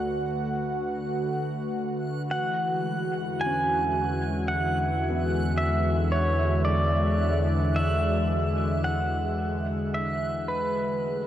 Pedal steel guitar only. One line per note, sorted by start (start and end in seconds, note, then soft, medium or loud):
2.31 3.43 F#5 loud
3.41 4.48 G#5 medium
4.48 5.60 F#5 medium
5.58 6.13 E5 medium
6.12 6.64 C#5 medium
6.65 7.78 D5 medium
7.76 8.84 E5 medium
8.84 9.94 F#5 medium
9.94 10.50 E5 medium
10.48 11.27 B4 medium